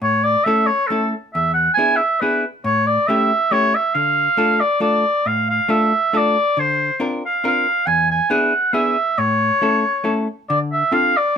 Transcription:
0.02 hollow-body jazz guitar A2, oboe C#5
0.24 oboe D5
0.44 hollow-body jazz guitar A3 C#4 E4 A4, oboe E5
0.66 oboe C#5
0.87 hollow-body jazz guitar A3, oboe A4
0.91 hollow-body jazz guitar C#4 E4 A4
1.35 hollow-body jazz guitar E2, oboe E5
1.54 oboe F#5
1.74 hollow-body jazz guitar B3, oboe G#5
1.78 hollow-body jazz guitar D4 E4 G#4
1.96 oboe E5
2.20 hollow-body jazz guitar B3 D4 E4 G#4, oboe B4
2.64 hollow-body jazz guitar A2, oboe C#5
2.86 oboe D5
3.07 hollow-body jazz guitar A3 C#4 E4 G4, oboe E5
3.51 hollow-body jazz guitar A3 C#4 E4 G4, oboe C#5
3.75 oboe E5
3.94 hollow-body jazz guitar D3, oboe F5
4.37 hollow-body jazz guitar A3 D4 F4 A4
4.60 oboe D5
4.80 hollow-body jazz guitar A3 D4 F4 A4, oboe D5
5.26 hollow-body jazz guitar A2, oboe F5
5.50 oboe F5
5.68 hollow-body jazz guitar A3 D4 F4 A4, oboe E5
6.13 hollow-body jazz guitar A3 D4 F4 A4
6.17 oboe D5
6.57 hollow-body jazz guitar D3, oboe C5
7.00 hollow-body jazz guitar C4 D4 F4 A#4
7.26 oboe F5
7.44 hollow-body jazz guitar C4 D4 F4 A#4, oboe F5
7.87 hollow-body jazz guitar E2, oboe G#5
8.10 oboe G#5
8.30 hollow-body jazz guitar B3 D4 E4 G#4, oboe F#5
8.73 hollow-body jazz guitar B3 D4 E4 G#4, oboe E5
9.18 hollow-body jazz guitar A2, oboe C#5
9.61 hollow-body jazz guitar A3 C#4 E4 A4
10.04 hollow-body jazz guitar A3 C#4 E4 A4
10.48 hollow-body jazz guitar D3, oboe D5
10.73 oboe E5
10.92 hollow-body jazz guitar C4 D4 F4 A4, oboe F5
11.17 oboe D5

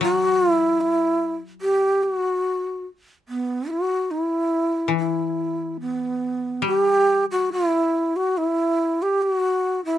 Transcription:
Already playing: koto E3
0.01 koto F#3, shakuhachi F#4
0.51 shakuhachi E4
0.81 shakuhachi E4
1.61 shakuhachi G4
2.03 shakuhachi F#4
3.29 shakuhachi B3
3.71 shakuhachi F#4
4.11 shakuhachi E4
4.88 koto E3
4.98 shakuhachi E4
5.80 shakuhachi B3
6.62 koto G3
6.66 shakuhachi G4
7.31 shakuhachi F#4
7.52 shakuhachi E4
8.16 shakuhachi F#4
8.38 shakuhachi E4
9.02 shakuhachi G4
9.22 shakuhachi F#4
9.85 shakuhachi E4

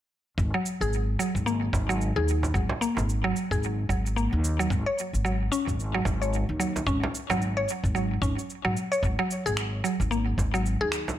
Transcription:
0.38 upright bass G#1, kick, cabasa
0.54 synth pluck F#3
0.66 cabasa
0.81 upright bass G#1, synth pluck G#4, cabasa
0.93 cabasa
1.19 synth pluck F#3, cabasa
1.35 upright bass G#1, kick, cabasa
1.46 synth pluck A#3, cabasa
1.73 upright bass G#1, kick, frame drum, cabasa
1.89 synth pluck F#3, cabasa
2.01 cabasa
2.16 upright bass D#2, synth pluck G#4
2.28 cabasa
2.43 frame drum, cabasa
2.54 upright bass G#1, synth pluck F#3, kick, cabasa
2.69 frame drum
2.81 synth pluck A#3, cabasa
2.97 upright bass G#1, frame drum, cabasa
3.09 cabasa
3.24 synth pluck F#3
3.36 cabasa
3.51 upright bass G#1, synth pluck G#4, kick, cabasa
3.63 cabasa
3.89 upright bass G#1, synth pluck F#3, kick, cabasa
4.06 cabasa
4.16 synth pluck A#3, cabasa
4.33 upright bass D#2
4.44 cabasa
4.59 synth pluck F#3, cabasa
4.70 upright bass G#1, kick, cabasa
4.86 synth pluck C#5
4.99 cabasa
5.13 upright bass G#1, cabasa
5.25 synth pluck F#3, cabasa
5.52 synth pluck C#4, cabasa
5.67 upright bass G#1, kick, cabasa
5.80 cabasa
5.94 synth pluck F#3
6.05 upright bass G#1, kick, frame drum, cabasa
6.22 synth pluck C#5, cabasa
6.33 cabasa
6.49 upright bass D#2
6.60 synth pluck F#3, cabasa
6.76 frame drum, cabasa
6.87 upright bass G#1, synth pluck C#4, kick, cabasa
7.03 frame drum
7.15 cabasa
7.30 upright bass G#1, synth pluck F#3, frame drum, cabasa
7.42 cabasa
7.57 synth pluck C#5
7.69 cabasa
7.84 upright bass G#1, kick, cabasa
7.95 synth pluck F#3, cabasa
8.22 upright bass G#1, synth pluck C#4, kick, cabasa
8.39 cabasa
8.50 cabasa
8.65 upright bass G#2, synth pluck F#3
8.77 cabasa
8.92 synth pluck C#5, cabasa
9.03 upright bass G#1, kick, cabasa
9.19 synth pluck F#3
9.31 cabasa
9.46 upright bass G#1, synth pluck G#4, cabasa
9.57 finger snap, cabasa
9.84 synth pluck F#3, cabasa
10.00 upright bass G#1, kick, cabasa
10.11 synth pluck A#3, cabasa
10.38 upright bass G#1, kick, frame drum, cabasa
10.54 synth pluck F#3, cabasa
10.66 cabasa
10.81 upright bass D#2, synth pluck G#4
10.92 finger snap, cabasa
11.08 frame drum, cabasa

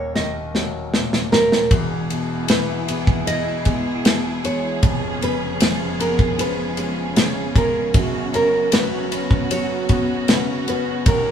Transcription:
Already playing: grand piano D#1 D#2 A#2 D#3 A#3, nylon-string guitar C#5
0.15 grand piano D#3, nylon-string guitar D#5, snare
0.55 grand piano F#3, snare
0.94 grand piano A#2, snare
1.13 snare
1.32 grand piano F#3, nylon-string guitar A#4, snare
1.52 snare
1.71 grand piano E1 E2, steel-string acoustic guitar E3, string section B3 E4 G#4, nylon-string guitar G#4, kick, ride
2.10 grand piano B2, steel-string acoustic guitar B3, ride
2.48 grand piano E3, steel-string acoustic guitar E4, nylon-string guitar B4, snare, ride
2.88 grand piano B3, steel-string acoustic guitar G#4, ride
3.07 kick
3.27 grand piano E3, steel-string acoustic guitar E4, nylon-string guitar D#5, ride
3.65 grand piano G#3, steel-string acoustic guitar B3, kick, ride
4.05 grand piano B2, steel-string acoustic guitar E4, snare, ride
4.44 grand piano G#3, steel-string acoustic guitar B3, nylon-string guitar C#5, ride
4.82 grand piano F1 F2, steel-string acoustic guitar F3, string section F3 G#3 B3 C#4, kick, ride
5.21 grand piano C#3, steel-string acoustic guitar C#4, nylon-string guitar B4, ride
5.60 grand piano F3, steel-string acoustic guitar F4, snare, ride
5.99 grand piano B3, steel-string acoustic guitar G#4, nylon-string guitar A#4, ride
6.19 kick
6.39 grand piano F3, steel-string acoustic guitar F4, nylon-string guitar B4, ride
6.77 grand piano G#3, steel-string acoustic guitar C#4, ride
7.16 grand piano C#3, steel-string acoustic guitar F4, snare, ride
7.55 grand piano G#3, steel-string acoustic guitar C#4, nylon-string guitar A#4, kick, ride
7.94 grand piano F#1 F#2, steel-string acoustic guitar F#3, string section B3 F#4, nylon-string guitar G#4, kick, ride
8.33 grand piano C#3, steel-string acoustic guitar C#4, nylon-string guitar A#4, ride
8.72 grand piano F#3, steel-string acoustic guitar F#4, nylon-string guitar B4, snare, ride
9.11 grand piano C#4, steel-string acoustic guitar B4, ride
9.31 kick
9.51 grand piano F#3, steel-string acoustic guitar F#4, nylon-string guitar C#5, ride
9.89 grand piano B3, steel-string acoustic guitar C#4, kick, ride
10.28 grand piano C#3, steel-string acoustic guitar F#4, nylon-string guitar B4, snare, ride
10.67 grand piano B3, steel-string acoustic guitar C#4, nylon-string guitar B4, ride
11.06 grand piano D#1 D#2, string section A#2 D#4 C#5, steel-string acoustic guitar D#3, nylon-string guitar A#4, kick, ride

